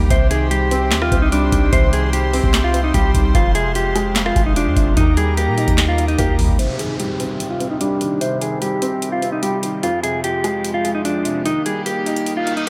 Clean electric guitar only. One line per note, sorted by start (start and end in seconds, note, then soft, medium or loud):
0.11 0.27 C5 medium
0.31 0.47 G#4 medium
0.51 0.99 G4 medium
1.02 1.18 F4 medium
1.22 1.30 D#4 medium
1.32 1.70 D4 medium
1.73 1.89 C5 loud
1.93 2.09 G#4 medium
2.13 2.61 G4 medium
2.64 2.80 F4 medium
2.84 2.92 D#4 medium
2.94 3.10 G4 medium
3.35 3.51 F4 medium
3.55 3.71 G#4 medium
3.76 4.23 G4 medium
4.26 4.42 F4 medium
4.46 4.54 D#4 medium
4.57 4.95 D4 medium
4.97 5.13 D#4 loud
5.17 5.33 G#4 medium
5.37 5.85 G4 medium
5.88 6.04 F4 medium
6.08 6.16 D#4 medium
6.18 6.35 G4 medium
6.59 6.75 C5 medium
6.79 6.95 G#4 medium
7.00 7.47 G4 medium
7.50 7.66 F4 medium
7.71 7.79 D#4 medium
7.81 8.19 D4 medium
8.21 8.37 C5 loud
8.42 8.58 G#4 medium
8.62 9.09 G4 medium
9.12 9.28 F4 medium
9.32 9.41 D#4 medium
9.43 9.59 G4 medium
9.83 9.99 F4 medium
10.03 10.19 G#4 medium
10.24 10.72 G4 medium
10.74 10.90 F4 medium
10.95 11.03 D#4 medium
11.05 11.43 D4 medium
11.46 11.62 D#4 loud
11.66 11.82 G#4 medium
11.86 12.34 G4 medium
12.37 12.53 F4 medium
12.57 12.65 D#4 medium